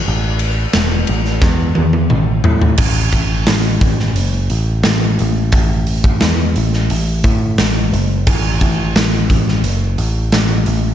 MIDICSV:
0, 0, Header, 1, 3, 480
1, 0, Start_track
1, 0, Tempo, 684151
1, 40, Time_signature, 4, 2, 24, 8
1, 7678, End_track
2, 0, Start_track
2, 0, Title_t, "Picked electric bass"
2, 0, Program_c, 0, 34
2, 54, Note_on_c, 0, 33, 99
2, 457, Note_off_c, 0, 33, 0
2, 525, Note_on_c, 0, 28, 90
2, 727, Note_off_c, 0, 28, 0
2, 766, Note_on_c, 0, 33, 84
2, 968, Note_off_c, 0, 33, 0
2, 995, Note_on_c, 0, 40, 109
2, 1202, Note_off_c, 0, 40, 0
2, 1248, Note_on_c, 0, 40, 81
2, 1449, Note_off_c, 0, 40, 0
2, 1481, Note_on_c, 0, 33, 81
2, 1685, Note_off_c, 0, 33, 0
2, 1718, Note_on_c, 0, 45, 95
2, 1924, Note_off_c, 0, 45, 0
2, 1954, Note_on_c, 0, 33, 98
2, 2187, Note_off_c, 0, 33, 0
2, 2194, Note_on_c, 0, 33, 80
2, 2427, Note_off_c, 0, 33, 0
2, 2440, Note_on_c, 0, 33, 85
2, 2670, Note_off_c, 0, 33, 0
2, 2674, Note_on_c, 0, 33, 93
2, 2907, Note_off_c, 0, 33, 0
2, 2918, Note_on_c, 0, 30, 93
2, 3149, Note_off_c, 0, 30, 0
2, 3158, Note_on_c, 0, 33, 85
2, 3389, Note_off_c, 0, 33, 0
2, 3404, Note_on_c, 0, 33, 79
2, 3633, Note_off_c, 0, 33, 0
2, 3652, Note_on_c, 0, 33, 103
2, 3877, Note_off_c, 0, 33, 0
2, 3880, Note_on_c, 0, 33, 90
2, 4340, Note_off_c, 0, 33, 0
2, 4368, Note_on_c, 0, 40, 95
2, 4595, Note_off_c, 0, 40, 0
2, 4605, Note_on_c, 0, 33, 102
2, 4834, Note_off_c, 0, 33, 0
2, 4844, Note_on_c, 0, 33, 96
2, 5073, Note_off_c, 0, 33, 0
2, 5080, Note_on_c, 0, 45, 88
2, 5311, Note_off_c, 0, 45, 0
2, 5323, Note_on_c, 0, 33, 82
2, 5553, Note_off_c, 0, 33, 0
2, 5561, Note_on_c, 0, 30, 100
2, 5792, Note_off_c, 0, 30, 0
2, 5803, Note_on_c, 0, 33, 94
2, 6033, Note_off_c, 0, 33, 0
2, 6041, Note_on_c, 0, 33, 96
2, 6272, Note_off_c, 0, 33, 0
2, 6283, Note_on_c, 0, 33, 89
2, 6513, Note_off_c, 0, 33, 0
2, 6522, Note_on_c, 0, 33, 93
2, 6752, Note_off_c, 0, 33, 0
2, 6764, Note_on_c, 0, 30, 90
2, 6993, Note_off_c, 0, 30, 0
2, 7003, Note_on_c, 0, 33, 90
2, 7232, Note_off_c, 0, 33, 0
2, 7247, Note_on_c, 0, 33, 87
2, 7474, Note_off_c, 0, 33, 0
2, 7485, Note_on_c, 0, 33, 98
2, 7678, Note_off_c, 0, 33, 0
2, 7678, End_track
3, 0, Start_track
3, 0, Title_t, "Drums"
3, 275, Note_on_c, 9, 51, 72
3, 345, Note_off_c, 9, 51, 0
3, 514, Note_on_c, 9, 51, 104
3, 515, Note_on_c, 9, 38, 111
3, 584, Note_off_c, 9, 51, 0
3, 586, Note_off_c, 9, 38, 0
3, 751, Note_on_c, 9, 51, 71
3, 821, Note_off_c, 9, 51, 0
3, 876, Note_on_c, 9, 38, 30
3, 946, Note_off_c, 9, 38, 0
3, 992, Note_on_c, 9, 38, 68
3, 994, Note_on_c, 9, 36, 111
3, 1063, Note_off_c, 9, 38, 0
3, 1064, Note_off_c, 9, 36, 0
3, 1229, Note_on_c, 9, 48, 79
3, 1299, Note_off_c, 9, 48, 0
3, 1355, Note_on_c, 9, 48, 67
3, 1425, Note_off_c, 9, 48, 0
3, 1473, Note_on_c, 9, 47, 79
3, 1543, Note_off_c, 9, 47, 0
3, 1712, Note_on_c, 9, 43, 105
3, 1782, Note_off_c, 9, 43, 0
3, 1835, Note_on_c, 9, 43, 94
3, 1905, Note_off_c, 9, 43, 0
3, 1947, Note_on_c, 9, 49, 117
3, 1953, Note_on_c, 9, 36, 111
3, 2017, Note_off_c, 9, 49, 0
3, 2023, Note_off_c, 9, 36, 0
3, 2192, Note_on_c, 9, 46, 65
3, 2193, Note_on_c, 9, 36, 83
3, 2262, Note_off_c, 9, 46, 0
3, 2263, Note_off_c, 9, 36, 0
3, 2432, Note_on_c, 9, 46, 97
3, 2433, Note_on_c, 9, 38, 126
3, 2502, Note_off_c, 9, 46, 0
3, 2503, Note_off_c, 9, 38, 0
3, 2675, Note_on_c, 9, 36, 90
3, 2678, Note_on_c, 9, 46, 64
3, 2745, Note_off_c, 9, 36, 0
3, 2748, Note_off_c, 9, 46, 0
3, 2801, Note_on_c, 9, 38, 31
3, 2871, Note_off_c, 9, 38, 0
3, 2917, Note_on_c, 9, 46, 80
3, 2987, Note_off_c, 9, 46, 0
3, 3156, Note_on_c, 9, 46, 67
3, 3226, Note_off_c, 9, 46, 0
3, 3391, Note_on_c, 9, 46, 72
3, 3393, Note_on_c, 9, 38, 117
3, 3461, Note_off_c, 9, 46, 0
3, 3463, Note_off_c, 9, 38, 0
3, 3641, Note_on_c, 9, 46, 61
3, 3711, Note_off_c, 9, 46, 0
3, 3873, Note_on_c, 9, 46, 77
3, 3877, Note_on_c, 9, 36, 107
3, 3943, Note_off_c, 9, 46, 0
3, 3947, Note_off_c, 9, 36, 0
3, 4117, Note_on_c, 9, 46, 61
3, 4187, Note_off_c, 9, 46, 0
3, 4238, Note_on_c, 9, 36, 99
3, 4308, Note_off_c, 9, 36, 0
3, 4354, Note_on_c, 9, 46, 83
3, 4355, Note_on_c, 9, 38, 115
3, 4424, Note_off_c, 9, 46, 0
3, 4426, Note_off_c, 9, 38, 0
3, 4600, Note_on_c, 9, 46, 60
3, 4670, Note_off_c, 9, 46, 0
3, 4722, Note_on_c, 9, 38, 32
3, 4792, Note_off_c, 9, 38, 0
3, 4841, Note_on_c, 9, 46, 83
3, 4911, Note_off_c, 9, 46, 0
3, 5078, Note_on_c, 9, 46, 63
3, 5081, Note_on_c, 9, 36, 90
3, 5148, Note_off_c, 9, 46, 0
3, 5151, Note_off_c, 9, 36, 0
3, 5319, Note_on_c, 9, 46, 87
3, 5320, Note_on_c, 9, 38, 104
3, 5389, Note_off_c, 9, 46, 0
3, 5391, Note_off_c, 9, 38, 0
3, 5568, Note_on_c, 9, 46, 62
3, 5638, Note_off_c, 9, 46, 0
3, 5800, Note_on_c, 9, 49, 97
3, 5802, Note_on_c, 9, 36, 110
3, 5870, Note_off_c, 9, 49, 0
3, 5873, Note_off_c, 9, 36, 0
3, 6042, Note_on_c, 9, 36, 83
3, 6042, Note_on_c, 9, 46, 68
3, 6112, Note_off_c, 9, 36, 0
3, 6112, Note_off_c, 9, 46, 0
3, 6285, Note_on_c, 9, 46, 89
3, 6286, Note_on_c, 9, 38, 120
3, 6355, Note_off_c, 9, 46, 0
3, 6356, Note_off_c, 9, 38, 0
3, 6524, Note_on_c, 9, 36, 85
3, 6524, Note_on_c, 9, 46, 68
3, 6594, Note_off_c, 9, 36, 0
3, 6594, Note_off_c, 9, 46, 0
3, 6651, Note_on_c, 9, 38, 34
3, 6722, Note_off_c, 9, 38, 0
3, 6763, Note_on_c, 9, 46, 86
3, 6833, Note_off_c, 9, 46, 0
3, 7004, Note_on_c, 9, 46, 60
3, 7074, Note_off_c, 9, 46, 0
3, 7242, Note_on_c, 9, 46, 80
3, 7244, Note_on_c, 9, 38, 116
3, 7313, Note_off_c, 9, 46, 0
3, 7314, Note_off_c, 9, 38, 0
3, 7479, Note_on_c, 9, 46, 62
3, 7550, Note_off_c, 9, 46, 0
3, 7678, End_track
0, 0, End_of_file